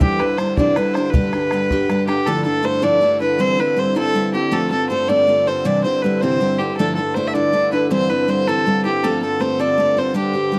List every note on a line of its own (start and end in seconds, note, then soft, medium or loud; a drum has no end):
0.00 2.27 G2 medium
0.00 0.19 C3 medium
0.00 2.27 D3 medium
0.00 0.20 E3 medium
0.00 0.20 G3 medium
0.00 0.20 D4 medium
0.00 0.19 E4 medium
0.00 0.21 G4 medium
0.00 0.19 C5 medium
0.00 bodhran medium
0.19 0.37 G3 soft
0.19 0.37 D4 soft
0.19 0.38 E4 soft
0.19 0.39 B4 medium
0.19 0.39 C5 soft
0.19 bodhran soft
0.37 0.57 G3 soft
0.37 0.57 D4 medium
0.37 0.57 E4 medium
0.37 0.57 C5 medium
0.37 bodhran medium
0.57 0.77 C3 soft
0.57 0.77 E3 medium
0.57 0.75 G3 medium
0.57 0.76 D4 medium
0.57 0.76 E4 medium
0.57 0.77 C5 medium
0.57 0.77 D5 medium
0.57 bodhran medium
0.76 0.95 G3 medium
0.76 0.95 D4 medium
0.76 0.95 E4 medium
0.76 0.95 B4 medium
0.76 0.95 C5 medium
0.76 bodhran medium
0.94 1.12 G3 soft
0.94 1.13 D4 soft
0.94 1.14 E4 soft
0.94 1.12 C5 medium
0.94 1.14 C5 soft
0.94 bodhran medium
1.11 1.33 G3 medium
1.11 1.33 D4 medium
1.11 1.32 G4 medium
1.11 2.06 B4 medium
1.11 bodhran medium
1.15 1.31 B4 medium
1.33 1.51 D4 soft
1.33 1.52 G4 soft
1.33 1.52 B4 soft
1.33 bodhran medium
1.51 1.71 G3 medium
1.51 1.71 D4 medium
1.51 1.71 G4 medium
1.51 1.71 B4 medium
1.51 bodhran medium
1.71 1.88 G3 medium
1.71 1.88 D4 medium
1.71 1.90 G4 medium
1.71 1.90 B4 medium
1.71 bodhran medium
1.89 2.08 G3 medium
1.89 2.08 D4 medium
1.89 2.07 G4 medium
1.89 2.06 B4 medium
1.89 bodhran soft
2.07 2.26 D4 soft
2.07 2.28 G4 medium
2.07 2.27 G4 soft
2.07 2.27 B4 medium
2.07 bodhran soft
2.26 6.78 G2 medium
2.26 2.46 D3 medium
2.26 6.77 D3 medium
2.26 2.46 F3 medium
2.26 2.45 A3 medium
2.26 2.45 D4 medium
2.26 2.44 E4 medium
2.26 2.44 A4 medium
2.26 2.43 A4 medium
2.44 2.61 A3 soft
2.44 2.62 D4 soft
2.44 2.63 E4 soft
2.44 2.63 A4 soft
2.44 2.67 A4 medium
2.63 2.82 A3 medium
2.63 2.81 D4 medium
2.63 2.81 E4 medium
2.63 2.81 A4 medium
2.63 2.84 C5 medium
2.82 3.02 D3 medium
2.82 3.02 F3 medium
2.82 2.99 A3 medium
2.82 3.00 D4 medium
2.82 3.01 E4 medium
2.82 3.01 A4 medium
2.82 3.20 D5 loud
3.01 3.20 A3 medium
3.01 3.21 D4 medium
3.01 3.20 E4 medium
3.01 3.19 A4 medium
3.20 3.39 A3 soft
3.20 3.40 D4 soft
3.20 3.39 E4 medium
3.20 3.39 A4 medium
3.20 3.42 B4 medium
3.39 3.58 E3 medium
3.39 3.58 G3 medium
3.39 3.58 C4 medium
3.39 3.58 E4 medium
3.39 3.56 C5 medium
3.39 3.61 C5 loud
3.57 3.75 C4 soft
3.57 3.76 E4 soft
3.57 3.80 B4 medium
3.57 3.77 C5 soft
3.77 3.95 G3 medium
3.77 3.95 C4 medium
3.77 3.95 E4 medium
3.77 3.94 C5 medium
3.77 3.97 C5 medium
3.95 4.15 E3 medium
3.95 4.13 G3 medium
3.95 4.14 C4 medium
3.95 4.14 E4 medium
3.95 4.32 A4 loud
3.95 4.14 C5 medium
4.14 4.33 G3 medium
4.14 4.34 C4 medium
4.14 4.33 E4 medium
4.14 4.32 C5 medium
4.34 4.51 C4 soft
4.34 4.52 E4 soft
4.34 4.54 G4 medium
4.34 4.52 C5 medium
4.51 4.71 F3 medium
4.51 4.71 A3 medium
4.51 4.71 C4 medium
4.51 4.71 F4 medium
4.51 4.69 A4 medium
4.51 4.70 A4 loud
4.71 4.89 C4 soft
4.71 4.90 F4 soft
4.71 4.90 A4 soft
4.71 4.89 A4 medium
4.90 5.08 A3 medium
4.90 5.08 C4 medium
4.90 5.08 F4 medium
4.90 5.08 A4 medium
4.90 5.10 C5 medium
5.08 5.28 F3 medium
5.08 5.26 A3 soft
5.08 5.27 C4 medium
5.08 5.28 F4 medium
5.08 5.28 A4 medium
5.08 5.48 D5 loud
5.27 5.46 A3 medium
5.27 5.47 C4 medium
5.27 5.47 F4 medium
5.27 5.46 A4 medium
5.47 5.64 C4 soft
5.47 5.65 F4 soft
5.47 5.66 A4 medium
5.47 5.68 C5 medium
5.65 5.84 C3 medium
5.65 5.84 E3 medium
5.65 5.84 G3 medium
5.65 5.84 C4 medium
5.65 5.84 E4 medium
5.65 5.83 C5 medium
5.65 5.83 D5 medium
5.84 6.03 G3 soft
5.84 6.03 C4 soft
5.84 6.03 E4 soft
5.84 6.04 C5 medium
5.84 6.03 C5 soft
6.02 6.22 G3 medium
6.02 6.22 C4 medium
6.02 6.21 E4 medium
6.02 6.22 B4 medium
6.02 6.21 C5 medium
6.21 6.41 C3 soft
6.21 6.41 E3 soft
6.21 6.39 G3 medium
6.21 6.40 C4 medium
6.21 6.40 E4 medium
6.21 6.60 C5 medium
6.21 6.41 C5 medium
6.41 6.59 G3 medium
6.41 6.60 C4 medium
6.41 6.59 E4 medium
6.41 6.58 C5 medium
6.58 6.79 G3 soft
6.58 6.79 C4 soft
6.58 6.78 E4 soft
6.58 6.76 G4 medium
6.58 6.78 C5 medium
6.77 10.59 G2 medium
6.77 10.59 D3 medium
6.77 6.97 D3 medium
6.77 6.97 F3 medium
6.77 6.98 A3 medium
6.77 6.97 D4 medium
6.77 6.97 E4 medium
6.77 6.94 A4 medium
6.77 6.96 A4 medium
6.95 7.16 D4 soft
6.95 7.16 E4 soft
6.95 7.16 A4 medium
6.95 7.16 A4 soft
6.99 7.15 A3 soft
7.14 7.34 A3 medium
7.14 7.34 D4 medium
7.14 7.34 E4 medium
7.14 7.34 A4 medium
7.14 7.29 C5 medium
7.27 7.35 E5 medium
7.34 7.54 D3 medium
7.34 7.54 F3 medium
7.34 7.52 A3 medium
7.34 7.52 D4 medium
7.34 7.52 E4 medium
7.34 7.53 A4 medium
7.34 7.72 D5 loud
7.53 7.72 A3 medium
7.53 7.71 D4 medium
7.53 7.71 E4 medium
7.53 7.70 A4 medium
7.71 7.90 A3 soft
7.71 7.91 D4 soft
7.71 7.90 E4 soft
7.71 7.90 A4 soft
7.71 7.90 B4 medium
7.91 8.09 E3 medium
7.91 8.09 G3 medium
7.91 8.10 C4 medium
7.91 8.09 E4 medium
7.91 8.09 C5 medium
7.91 8.11 C5 loud
8.09 8.27 C4 soft
8.09 8.28 E4 soft
8.09 8.31 B4 medium
8.09 8.28 C5 soft
8.28 8.47 G3 medium
8.28 8.47 C4 medium
8.28 8.47 E4 medium
8.28 8.47 C5 medium
8.28 8.49 C5 medium
8.48 8.67 E3 medium
8.48 8.65 G3 medium
8.48 8.66 C4 medium
8.48 8.66 E4 medium
8.48 8.84 A4 medium
8.48 8.66 C5 medium
8.66 8.85 G3 medium
8.66 8.84 C4 medium
8.66 8.84 E4 medium
8.66 8.83 C5 medium
8.84 9.03 C4 soft
8.84 9.04 E4 soft
8.84 9.05 G4 medium
8.84 9.03 C5 medium
9.04 9.22 F3 medium
9.04 9.22 A3 medium
9.04 9.22 C4 medium
9.04 9.22 F4 medium
9.04 9.22 A4 medium
9.22 9.39 C4 soft
9.22 9.40 F4 soft
9.22 9.43 A4 medium
9.22 9.41 A4 soft
9.40 9.59 A3 medium
9.40 9.59 C4 medium
9.40 9.59 F4 medium
9.40 9.58 A4 medium
9.40 9.61 C5 medium
9.60 9.79 F3 medium
9.60 9.77 A3 medium
9.60 9.77 C4 medium
9.60 9.79 F4 medium
9.60 9.78 A4 medium
9.60 10.00 D5 medium
9.78 9.97 A3 medium
9.78 9.97 C4 medium
9.78 9.96 F4 medium
9.78 9.95 A4 medium
9.97 10.14 C4 soft
9.97 10.15 F4 soft
9.97 10.15 A4 soft
9.97 10.16 C5 medium
10.14 10.34 G3 medium
10.14 10.34 D4 medium
10.14 10.33 G4 medium
10.14 10.59 G4 medium
10.14 10.32 C5 medium
10.33 10.52 D4 soft
10.33 10.52 G4 soft
10.33 10.52 C5 soft
10.52 10.59 G3 medium
10.52 10.59 D4 medium
10.52 10.59 G4 medium
10.52 10.59 C5 medium